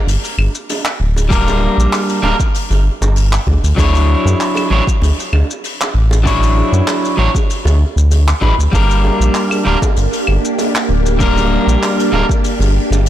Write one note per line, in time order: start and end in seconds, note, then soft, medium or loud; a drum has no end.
0.07 0.17 G1 medium
0.07 open hi-hat medium
0.07 shaker medium
0.23 open hi-hat medium
0.23 shaker medium
0.38 0.48 G1 medium
0.38 high bongo soft
0.38 claves medium
0.55 shaker medium
0.69 open hi-hat medium
0.69 high bongo medium
0.69 shaker medium
0.85 clap medium
0.85 shaker medium
1.00 1.68 D1 medium
1.16 open hi-hat medium
1.16 high bongo medium
1.16 shaker medium
1.29 2.19 G3 medium
1.29 2.20 A#3 medium
1.29 2.20 D4 medium
1.29 2.21 A#4 medium
1.29 kick loud
1.29 open hi-hat medium
1.29 shaker medium
1.47 open hi-hat medium
1.47 high bongo medium
1.47 shaker medium
1.78 1.87 A#1 loud
1.78 shaker medium
1.92 clap medium
1.92 open hi-hat medium
1.92 high bongo medium
1.92 shaker medium
2.09 open hi-hat medium
2.09 shaker soft
2.22 2.33 D1 medium
2.22 2.34 G3 medium
2.22 2.35 A#3 medium
2.22 2.35 D4 medium
2.22 2.35 A#4 loud
2.22 high bongo loud
2.40 kick loud
2.40 shaker medium
2.54 open hi-hat medium
2.54 shaker medium
2.70 2.89 G1 loud
2.70 open hi-hat medium
2.70 high bongo medium
2.70 shaker soft
3.01 3.38 G1 medium
3.01 high bongo medium
3.01 shaker medium
3.16 open hi-hat medium
3.16 shaker medium
3.33 clap medium
3.33 open hi-hat medium
3.33 shaker medium
3.47 3.57 D2 loud
3.47 kick medium
3.47 high bongo medium
3.64 3.73 D2 medium
3.64 open hi-hat medium
3.64 shaker medium
3.76 4.15 D2 medium
3.76 4.67 F#3 medium
3.76 4.67 D4 medium
3.76 4.68 E4 medium
3.76 4.69 C#5 medium
3.76 kick loud
3.76 open hi-hat medium
3.76 high bongo medium
3.76 shaker medium
3.95 open hi-hat medium
3.95 shaker medium
4.25 4.35 F#2 loud
4.25 high bongo medium
4.25 shaker medium
4.40 clap medium
4.40 open hi-hat medium
4.40 shaker medium
4.55 open hi-hat medium
4.55 high bongo medium
4.55 claves medium
4.55 shaker soft
4.70 4.81 A1 medium
4.70 4.82 F#3 medium
4.70 4.82 D4 medium
4.70 4.83 E4 medium
4.70 4.83 C#5 loud
4.87 kick loud
4.87 shaker medium
5.02 5.12 D2 medium
5.02 open hi-hat medium
5.02 high bongo medium
5.02 shaker medium
5.19 open hi-hat medium
5.19 shaker medium
5.33 5.43 D2 medium
5.33 high bongo medium
5.33 claves soft
5.51 shaker medium
5.64 open hi-hat medium
5.64 shaker medium
5.81 clap medium
5.81 open hi-hat medium
5.81 high bongo medium
5.81 shaker medium
5.94 6.63 A1 medium
6.11 open hi-hat soft
6.11 high bongo medium
6.11 shaker medium
6.23 7.14 F#3 medium
6.23 7.15 D4 medium
6.23 7.15 E4 medium
6.23 7.16 C#5 medium
6.23 kick loud
6.23 open hi-hat medium
6.23 shaker medium
6.42 open hi-hat medium
6.42 shaker medium
6.58 high bongo medium
6.73 6.82 F#2 loud
6.73 shaker medium
6.88 clap medium
6.88 open hi-hat medium
6.88 high bongo medium
6.88 shaker medium
7.04 open hi-hat medium
7.04 shaker medium
7.17 7.29 A1 medium
7.17 7.29 F#3 loud
7.17 7.29 D4 medium
7.17 7.30 E4 medium
7.17 7.30 C#5 loud
7.35 kick loud
7.35 high bongo medium
7.35 shaker medium
7.50 open hi-hat medium
7.50 shaker medium
7.65 7.84 D2 loud
7.65 open hi-hat medium
7.65 high bongo medium
7.65 shaker medium
7.96 8.33 D2 medium
7.96 shaker medium
8.11 open hi-hat medium
8.11 high bongo soft
8.11 shaker medium
8.28 clap medium
8.28 open hi-hat medium
8.28 shaker medium
8.41 8.52 A1 loud
8.41 8.53 F#3 loud
8.41 8.53 D4 medium
8.41 8.53 E4 medium
8.41 8.54 B4 loud
8.41 kick medium
8.41 high bongo medium
8.58 8.68 D2 medium
8.58 open hi-hat soft
8.58 shaker medium
8.72 9.10 G1 loud
8.72 9.62 G3 medium
8.72 9.63 A#3 medium
8.72 13.09 A#3 medium
8.72 13.09 D4 medium
8.72 9.63 D4 medium
8.72 13.09 G4 medium
8.72 9.64 A#4 medium
8.72 kick loud
8.72 open hi-hat medium
8.72 high bongo medium
8.72 shaker medium
8.89 open hi-hat medium
8.89 shaker medium
9.05 high bongo medium
9.20 9.29 A#1 medium
9.20 shaker medium
9.34 clap medium
9.34 open hi-hat medium
9.34 shaker medium
9.50 open hi-hat medium
9.50 high bongo soft
9.50 claves medium
9.50 shaker medium
9.65 9.76 D1 medium
9.65 9.77 G3 medium
9.65 9.77 A#3 medium
9.65 9.77 D4 medium
9.65 9.78 A#4 medium
9.82 kick loud
9.82 high bongo medium
9.82 shaker medium
9.96 10.07 G1 medium
9.96 open hi-hat medium
9.96 shaker medium
10.13 open hi-hat medium
10.13 shaker medium
10.27 10.38 G1 medium
10.27 high bongo soft
10.27 claves medium
10.45 shaker medium
10.58 open hi-hat medium
10.58 high bongo medium
10.58 shaker medium
10.75 clap medium
10.75 open hi-hat medium
10.75 shaker medium
10.89 11.58 D1 medium
11.05 open hi-hat soft
11.05 high bongo medium
11.05 shaker medium
11.19 12.09 G3 medium
11.19 12.10 A#3 medium
11.19 12.10 D4 medium
11.19 12.11 A#4 medium
11.19 kick loud
11.19 open hi-hat medium
11.19 shaker medium
11.37 open hi-hat medium
11.37 high bongo medium
11.37 shaker medium
11.67 11.77 A#1 loud
11.67 shaker medium
11.82 clap medium
11.82 open hi-hat medium
11.82 high bongo medium
11.82 shaker medium
11.99 open hi-hat medium
11.99 shaker medium
12.12 12.23 D1 medium
12.12 12.24 G3 medium
12.12 12.24 A#3 medium
12.12 12.25 D4 medium
12.12 12.25 A#4 loud
12.12 high bongo medium
12.29 kick loud
12.29 shaker medium
12.44 open hi-hat medium
12.44 shaker medium
12.60 12.79 G1 loud
12.60 open hi-hat medium
12.60 high bongo medium
12.60 shaker soft
12.91 13.09 G1 medium
12.91 high bongo medium
12.91 shaker medium
13.06 open hi-hat medium